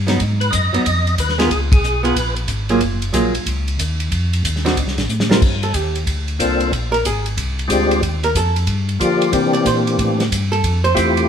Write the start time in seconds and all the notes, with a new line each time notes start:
Already playing: G2
0.07 F#3 B3 D#4, snare, ride
0.20 G#2, kick, ride
0.41 B4, ride
0.51 F#2 D#5, kick, hi-hat pedal, ride
0.73 F#2 F#3 B3 D#4, ride
0.85 F2 D#5, kick, ride
1.07 ride
1.18 D#2 B4, kick, hi-hat pedal, ride
1.29 snare
1.38 B3 F4 G#4 A#4, snare, ride
1.50 C#2 G#4, kick, ride
1.72 G#4, kick, ride
1.81 B1, hi-hat pedal
2.03 B3 F4 G#4 B4, ride
2.16 A#1, kick, ride
2.36 ride
2.48 G#1, kick, hi-hat pedal, ride
2.69 F#3 A#3 F4 G#4, ride
2.80 F#1, kick, ride
3.02 ride
3.13 A#1 F#3 A#3 F4 G#4, kick, hi-hat pedal, ride
3.33 A#1, ride
3.46 C#2, kick, ride
3.68 ride
3.78 D#2, kick, hi-hat pedal, ride
4.00 ride
4.11 F2, kick, ride
4.33 ride
4.44 D#2, kick, hi-hat pedal, ride
4.56 snare
4.65 D3 C4 D#4 F#4, snare, ride
4.77 D2, kick, ride
4.86 C2, snare
4.97 A1, snare, ride
5.09 A2, hi-hat pedal
5.20 snare
5.29 G3 C4 F4 A#4, snare
5.42 G2, kick, crash
5.63 A4, ride
5.74 D#2 G4, kick, hi-hat pedal, ride
5.95 ride
6.07 D2, kick, ride
6.28 ride
6.39 C2 A#3 C4 D4 F4 A4, kick, hi-hat pedal, ride
6.60 ride
6.72 A#1, kick, ride
6.92 A#4, ride
7.04 G#1 G#4, kick, hi-hat pedal, ride
7.26 ride
7.37 C2, kick, ride
7.59 ride
7.68 D2 G#3 C4 D4 F4 G4, kick, hi-hat pedal, ride
7.91 ride
8.02 D#2, kick, ride
8.23 A#4, ride
8.35 F2 A4, kick, hi-hat pedal, ride
8.56 ride
8.67 G2, kick, ride
8.89 ride
9.00 D3 F3 A#3 D4 F4 G4, kick, hi-hat pedal, ride
9.22 ride
9.32 C3 E3 A#3 C4 D4 G4, kick, ride
9.53 D5, ride
9.65 A#2 C5, kick, hi-hat pedal, ride
9.87 ride
9.98 A2, kick, ride
10.20 snare, ride
10.31 G2, kick, hi-hat pedal, ride
10.52 A4, ride
10.63 F2, kick, ride
10.84 C5, ride
10.94 E2 A3 C4 E4 F4 G4, kick, hi-hat pedal, ride
11.17 ride